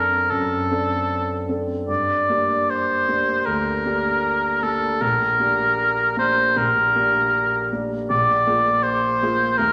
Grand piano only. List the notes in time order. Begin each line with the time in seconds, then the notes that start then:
Already playing: F#2 C4 D4 A4
0.32 F#2
0.71 C4 D4 A4
1.49 C4 D4 A4
1.88 G2
2.29 A#3 D4 G4
3.09 A#3 D4 G4
3.46 D2
3.85 A#3 D4 G4
4.63 A#3 D4 G4
5.01 A#1
5.39 A#3 D4 G4
6.17 A#3 D4 G4
6.56 A#1
6.96 A#3 D4 G4
7.72 A#3 D4 G4
8.10 A#1
8.47 A#3 F4 G#4
9.23 A#3 F4 G#4
9.59 D#2